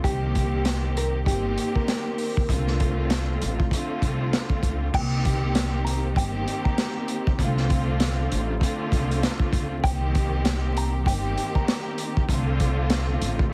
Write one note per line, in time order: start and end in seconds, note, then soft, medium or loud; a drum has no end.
0.03 1.23 C2 loud
0.03 1.18 D#3 loud
0.03 1.19 A#3 loud
0.03 1.19 C4 medium
0.03 0.62 G4 loud
0.03 1.20 G4 loud
0.03 kick medium
0.03 closed hi-hat medium
0.35 kick medium
0.35 closed hi-hat medium
0.65 snare loud
0.65 closed hi-hat loud
0.97 1.13 A#4 medium
0.97 closed hi-hat medium
1.24 1.54 G1 medium
1.24 2.40 D#3 loud
1.24 2.40 A#3 medium
1.24 2.41 C4 medium
1.24 2.41 G4 loud
1.24 1.73 G4 medium
1.24 kick medium
1.24 closed hi-hat medium
1.58 closed hi-hat medium
1.75 2.45 A#4 medium
1.75 kick medium
1.88 snare loud
1.88 closed hi-hat medium
2.18 open hi-hat soft
2.37 kick medium
2.49 3.37 C2 loud
2.49 3.63 D3 loud
2.49 3.64 A3 loud
2.49 3.64 C4 medium
2.49 3.65 F4 loud
2.49 kick loud
2.49 closed hi-hat medium
2.67 snare soft
2.80 kick medium
2.80 closed hi-hat medium
3.10 snare loud
3.10 closed hi-hat loud
3.42 3.69 A1 medium
3.42 closed hi-hat medium
3.60 kick medium
3.70 4.86 D3 loud
3.70 4.86 A3 loud
3.70 4.86 C4 medium
3.70 4.87 F4 loud
3.70 kick medium
3.70 closed hi-hat medium
4.02 4.30 C2 medium
4.02 kick medium
4.02 closed hi-hat medium
4.33 snare loud
4.33 closed hi-hat medium
4.50 kick medium
4.63 4.91 C#2 medium
4.63 kick medium
4.63 closed hi-hat medium
4.93 6.13 C2 loud
4.93 6.08 D#3 loud
4.93 6.09 A#3 loud
4.93 6.09 C4 medium
4.93 6.09 G4 loud
4.93 5.52 G5 loud
4.93 kick loud
4.93 crash loud
5.25 kick medium
5.25 closed hi-hat medium
5.55 snare loud
5.55 closed hi-hat loud
5.85 6.02 A#5 medium
5.85 closed hi-hat medium
6.14 6.44 G1 loud
6.14 7.30 D#3 loud
6.14 7.30 A#3 medium
6.14 7.31 C4 medium
6.14 7.31 G4 loud
6.14 6.63 G5 medium
6.14 kick loud
6.18 closed hi-hat loud
6.48 closed hi-hat medium
6.65 7.35 A#5 medium
6.65 kick medium
6.78 snare loud
6.78 closed hi-hat loud
7.08 closed hi-hat medium
7.27 kick loud
7.38 8.27 C2 loud
7.38 8.53 D3 loud
7.38 8.54 A3 loud
7.38 8.54 C4 loud
7.38 8.54 F4 loud
7.38 kick loud
7.38 closed hi-hat medium
7.57 snare soft
7.70 kick medium
7.70 closed hi-hat medium
8.00 snare loud
8.00 closed hi-hat loud
8.32 8.59 A1 loud
8.32 closed hi-hat medium
8.60 9.75 D3 loud
8.60 9.76 A3 loud
8.60 9.76 C4 medium
8.60 9.76 F4 loud
8.60 kick loud
8.60 closed hi-hat medium
8.92 9.20 C2 loud
8.92 kick medium
8.92 closed hi-hat medium
9.11 closed hi-hat soft
9.23 snare loud
9.23 closed hi-hat loud
9.40 kick loud
9.53 9.81 C#2 medium
9.53 kick loud
9.53 closed hi-hat medium
9.83 11.02 C2 loud
9.83 10.98 D#3 loud
9.83 10.98 A#3 loud
9.83 10.99 C4 medium
9.83 10.99 G4 loud
9.83 10.41 G5 loud
9.83 kick loud
9.83 closed hi-hat medium
10.15 kick medium
10.15 closed hi-hat medium
10.45 snare loud
10.45 closed hi-hat loud
10.77 10.93 A#5 medium
10.77 closed hi-hat medium
11.03 11.34 G1 loud
11.03 12.19 D#3 loud
11.03 12.20 A#3 medium
11.03 12.20 C4 loud
11.03 12.21 G4 loud
11.03 11.53 G5 medium
11.03 kick loud
11.08 closed hi-hat loud
11.38 closed hi-hat medium
11.55 12.25 A#5 medium
11.55 kick medium
11.68 snare loud
11.68 closed hi-hat loud
11.98 closed hi-hat medium
12.17 kick loud
12.28 13.17 C2 loud
12.28 13.43 D3 loud
12.28 13.44 A3 loud
12.28 13.44 C4 loud
12.28 13.44 F4 loud
12.28 kick loud
12.28 closed hi-hat medium
12.60 kick medium
12.60 closed hi-hat medium
12.90 snare loud
12.90 closed hi-hat loud
13.21 13.49 A1 loud
13.21 closed hi-hat medium
13.39 kick medium
13.50 13.53 D3 loud